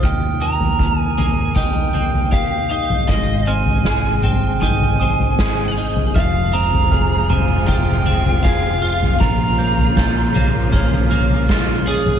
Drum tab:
SD |----------------|----o-------o---|----------------|----o-------o---|
T2 |------o-o------o|------o-o------o|------o-o------o|------o-o------o|
FT |o--oo-o-oooo---o|o--oo-o-oooo---o|o--oo-o-oooo---o|o--oo-o-oooo---o|
BD |o---o---o---o---|o---o---o---o---|o---o---o---o---|o---o---o---o---|